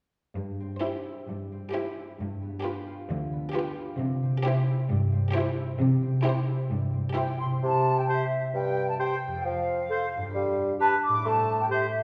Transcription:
0.36 0.73 G2 soft
0.36 2.19 G2 soft
0.60 1.51 C4 soft
0.81 1.16 E4 soft
0.81 1.16 G4 soft
0.81 1.73 G4 soft
0.81 1.16 C5 soft
1.06 1.96 E4 soft
1.28 1.64 G2 soft
1.28 4.88 G3 soft
1.52 2.21 C4 soft
1.73 2.08 E4 soft
1.73 2.08 G4 soft
1.73 2.63 G4 soft
1.73 2.07 C5 soft
1.97 2.21 E4 soft
2.19 2.55 G2 soft
2.19 4.02 G2 soft
2.42 3.31 B3 soft
2.64 2.98 F4 soft
2.64 2.98 G4 soft
2.64 3.54 G4 soft
2.64 2.98 B4 soft
2.87 3.76 F4 soft
3.09 3.45 D2 soft
3.09 4.02 D3 soft
3.33 4.02 B3 soft
3.53 3.88 F4 soft
3.53 3.88 G4 soft
3.53 4.43 G4 soft
3.53 3.89 B4 soft
3.77 4.02 F4 soft
3.99 5.80 C3 soft
3.99 4.36 C3 medium
4.23 5.11 C4 soft
4.44 4.79 E4 soft
4.44 4.78 G4 medium
4.44 5.33 G4 soft
4.44 4.79 C5 soft
4.67 5.56 E4 soft
4.89 5.25 G2 medium
4.89 6.70 G3 soft
5.12 6.02 C4 soft
5.34 5.69 E4 medium
5.34 5.68 G4 medium
5.34 6.24 G4 soft
5.34 5.68 C5 soft
5.57 6.46 E4 soft
5.80 6.16 C3 medium
5.80 7.44 C3 soft
6.03 6.92 C4 soft
6.23 6.58 E4 soft
6.23 6.58 G4 soft
6.23 7.15 G4 soft
6.23 6.58 C5 soft
6.48 7.38 E4 soft
6.70 7.06 G2 soft
6.70 9.48 G3 soft
6.93 7.48 C4 soft
7.14 7.51 E4 soft
7.14 7.50 G4 soft
7.14 7.52 G4 soft
7.14 7.50 C5 soft
7.14 7.37 G5 medium
7.39 9.47 E4 soft
7.39 7.45 C6 medium
7.45 9.38 C3 soft
7.49 9.30 C4 soft
7.54 9.43 G4 soft
7.58 9.39 C5 soft
7.62 8.01 C3 soft
7.62 7.96 A5 medium
7.98 8.09 G5 soft
8.09 8.25 G4 soft
8.09 8.25 C5 soft
8.09 8.54 E5 soft
8.53 8.92 G2 soft
8.53 8.87 G5 medium
8.88 8.93 A5 medium
8.99 9.15 G4 soft
8.99 9.16 C5 soft
8.99 9.44 G5 medium
9.27 10.28 F2 soft
9.31 10.30 C4 soft
9.36 10.33 A4 soft
9.41 10.35 C5 soft
9.45 9.83 F3 medium
9.45 10.58 F5 medium
9.90 10.06 A4 soft
9.90 10.07 C5 soft
10.17 11.18 G2 soft
10.22 11.12 G3 soft
10.26 12.03 G4 soft
10.30 10.73 G3 soft
10.30 11.25 B4 soft
10.79 10.95 G4 soft
10.79 10.97 B4 soft
10.79 10.86 A5 medium
11.04 11.26 D6 medium
11.09 12.03 A2 soft
11.13 12.03 G3 soft
11.18 12.03 E4 soft
11.22 11.63 A3 medium
11.22 12.03 C5 soft
11.22 11.60 A5 medium
11.60 11.65 G5 medium
11.69 11.85 G4 soft
11.69 11.87 C5 soft
11.69 12.03 E5 medium

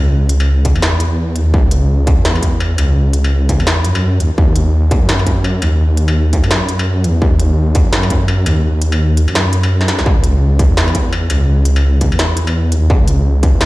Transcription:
0.00 0.11 C#2 loud
0.12 0.74 C#2 loud
0.29 closed hi-hat medium
0.40 struck metal medium
0.65 kick medium
0.65 closed hi-hat medium
0.76 1.38 E2 medium
0.76 struck metal soft
0.82 snare loud
0.82 closed hi-hat soft
1.00 closed hi-hat medium
1.36 1.53 D#2 medium
1.36 closed hi-hat medium
1.54 2.16 C#2 loud
1.54 kick loud
1.71 closed hi-hat medium
2.07 kick loud
2.07 closed hi-hat medium
2.18 2.77 E2 medium
2.25 snare loud
2.25 closed hi-hat soft
2.35 struck metal soft
2.42 kick medium
2.42 closed hi-hat medium
2.60 struck metal medium
2.78 2.95 C#2 loud
2.78 closed hi-hat medium
2.78 struck metal medium
2.96 3.58 C#2 loud
3.13 closed hi-hat medium
3.24 struck metal medium
3.49 kick medium
3.49 closed hi-hat medium
3.60 3.86 E2 medium
3.60 struck metal soft
3.67 snare loud
3.67 closed hi-hat soft
3.85 4.19 F#2 medium
3.85 closed hi-hat medium
3.95 struck metal medium
4.20 4.30 D#2 medium
4.20 closed hi-hat medium
4.38 5.00 D#2 loud
4.38 kick loud
4.56 closed hi-hat medium
4.91 kick loud
4.91 closed hi-hat medium
5.02 5.61 F#2 medium
5.09 snare loud
5.09 closed hi-hat soft
5.19 struck metal soft
5.27 kick medium
5.27 closed hi-hat medium
5.44 struck metal medium
5.62 5.79 D#2 loud
5.62 closed hi-hat medium
5.62 struck metal medium
5.80 6.42 D#2 loud
5.97 closed hi-hat medium
6.08 struck metal medium
6.33 kick medium
6.33 closed hi-hat medium
6.44 7.06 F#2 medium
6.44 struck metal soft
6.51 snare loud
6.51 closed hi-hat soft
6.69 closed hi-hat medium
6.79 struck metal medium
7.04 7.21 E2 medium
7.04 closed hi-hat medium
7.22 7.84 D#2 loud
7.22 kick loud
7.40 closed hi-hat medium
7.75 kick loud
7.75 closed hi-hat medium
7.86 8.45 F#2 medium
7.93 snare loud
7.93 closed hi-hat soft
8.03 struck metal soft
8.10 kick medium
8.10 closed hi-hat medium
8.28 struck metal medium
8.46 8.63 D#2 loud
8.46 closed hi-hat medium
8.46 struck metal medium
8.64 9.27 D#2 loud
8.82 closed hi-hat medium
8.92 struck metal medium
9.17 closed hi-hat medium
9.28 10.00 F#2 medium
9.28 struck metal soft
9.35 snare loud
9.35 closed hi-hat soft
9.53 closed hi-hat medium
9.63 struck metal medium
9.81 snare medium
9.88 snare medium
9.88 closed hi-hat medium
9.99 10.05 A#1 medium
9.99 snare medium
10.06 10.68 C#2 loud
10.06 kick loud
10.24 closed hi-hat medium
10.59 kick loud
10.59 closed hi-hat medium
10.70 11.29 E2 medium
10.77 snare loud
10.77 closed hi-hat soft
10.88 struck metal soft
10.95 kick medium
10.95 closed hi-hat medium
11.13 struck metal medium
11.30 11.47 C#2 loud
11.30 closed hi-hat medium
11.30 struck metal medium
11.48 12.11 C#2 loud
11.65 closed hi-hat medium
11.76 struck metal medium
12.01 kick medium
12.01 closed hi-hat medium
12.12 12.74 E2 medium
12.12 struck metal soft
12.19 snare loud
12.19 closed hi-hat soft
12.37 closed hi-hat medium
12.47 struck metal medium
12.72 12.89 D#2 medium
12.72 closed hi-hat medium
12.90 13.52 C#2 loud
12.90 kick loud
13.08 closed hi-hat medium
13.43 kick loud
13.43 closed hi-hat medium
13.54 13.65 E2 medium
13.61 snare loud
13.61 closed hi-hat soft

